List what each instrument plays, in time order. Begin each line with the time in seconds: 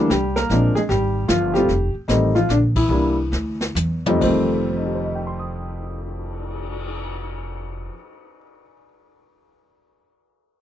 Already playing: grand piano A4
0.10 upright bass C2, grand piano G3 G4, kick, snare, hi-hat pedal
0.36 grand piano A#3 A#4, snare
0.49 upright bass A#1, grand piano F3 G#3 C4 D4, brush sweep, kick, snare
0.74 grand piano G#3 G#4, muted upright bass stroke, snare
0.89 upright bass G#1, grand piano G3 G4, kick, snare
1.28 upright bass G1, grand piano F3 F4, kick, snare, hi-hat pedal
1.54 grand piano G3 A3 C4 F4 G4, snare
1.69 upright bass F1, brush sweep, kick, snare
1.95 muted upright bass stroke
2.08 upright bass A1, grand piano D#3 G3 A3 C4 D#4, kick, snare, hi-hat pedal
2.35 grand piano F3 F4, snare
2.49 upright bass A#1, grand piano D3 D4, kick, snare, hi-hat pedal
2.76 grand piano E3 E4, kick, crash
2.89 upright bass C2, grand piano G3 A#3 D4 E4, brush sweep
3.32 upright bass D2, snare
3.61 snare
3.75 upright bass E2, hi-hat pedal, high tom
4.06 grand piano F2 G3 A3 C4 D#4, high tom
4.21 upright bass F1, grand piano F2 D#3 G3 A3 C4, kick, crash
4.52 cymbal swell
4.70 grand piano C4
4.77 grand piano D#4
4.85 grand piano G4
4.94 grand piano C5
5.04 grand piano D#5
5.15 grand piano G5
5.27 grand piano C6
5.39 grand piano D#6